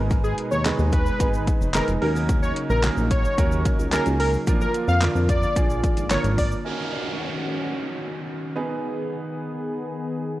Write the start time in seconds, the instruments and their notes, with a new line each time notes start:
Already playing: analog synth bass G#1, analog synth pad B2 G#3 D#4, grand piano G#3 B3 D#4 G#4 B4
0.10 kick, closed hi-hat, shaker
0.24 analog synth lead G#4, shaker
0.38 closed hi-hat
0.51 analog synth bass D#2, analog synth lead C#5, shaker
0.65 grand piano G#3 B3 D#4 G#4 B4, snare, clap, closed hi-hat, shaker
0.79 analog synth bass D#2, shaker
0.92 analog synth lead B4, kick, closed hi-hat, shaker
1.06 shaker
1.20 analog synth bass G#1, grand piano G#3 B3 D#4 G#4 B4, kick, closed hi-hat, shaker
1.34 shaker
1.47 kick, closed hi-hat, shaker
1.61 analog synth bass F1, shaker
1.74 grand piano G#3 B3 D#4 G#4 B4, analog synth lead A#4, snare, clap, closed hi-hat, shaker
1.88 analog synth bass F1, closed hi-hat, shaker
2.01 analog synth bass D#2, analog synth pad C#3 F#3, grand piano A#3 C#4 D#4 F#4 A#4, analog synth lead A#4, open hi-hat
2.16 shaker
2.29 kick, closed hi-hat, shaker
2.42 analog synth lead C#5, shaker
2.56 closed hi-hat
2.70 analog synth bass A#1, analog synth lead A#4, shaker
2.83 grand piano A#3 C#4 D#4 F#4 A#4, snare, clap, closed hi-hat, shaker
2.97 analog synth bass A#1, shaker
3.11 analog synth lead C#5, kick, closed hi-hat, shaker
3.25 shaker
3.38 analog synth bass D#2, grand piano A#3 C#4 D#4 F#4 A#4, kick, closed hi-hat, shaker
3.52 shaker
3.65 kick, closed hi-hat, shaker
3.79 analog synth bass C#2, shaker
3.92 grand piano A#3 C#4 D#4 F#4 G#4, analog synth lead A#4, snare, clap, closed hi-hat, shaker
4.06 analog synth bass C#2, closed hi-hat, shaker
4.20 analog synth lead A#4, open hi-hat
4.34 shaker
4.47 analog synth bass A#1, analog synth pad D3 A#3 F4, grand piano F3 A#3 D4 F4 A#4, kick, closed hi-hat, shaker
4.61 analog synth lead A#4, shaker
4.74 closed hi-hat, shaker
4.88 analog synth bass F2, analog synth lead F5, shaker
5.02 grand piano F3 A#3 D4 F4 A#4, snare, clap, closed hi-hat, shaker
5.15 analog synth bass F2, shaker
5.29 analog synth lead D5, kick, closed hi-hat, shaker
5.43 shaker
5.56 analog synth bass A#1, grand piano F3 A#3 D4 F4 G#4, kick, closed hi-hat, shaker
5.70 shaker
5.83 kick, closed hi-hat, shaker
5.97 analog synth bass G#1, closed hi-hat, shaker
6.10 grand piano F3 A#3 D4 F4 A#4, analog synth lead C#5, snare, clap, closed hi-hat, shaker
6.24 analog synth bass G#1, closed hi-hat, shaker
6.38 analog synth lead D5, kick, open hi-hat, shaker
6.52 shaker
6.65 analog synth pad D#3 C#4 F#4, grand piano C#4 D#4 F#4 A#4, downlifter
8.56 grand piano B3 D#4 G#4 B4, analog synth pad B3 G#4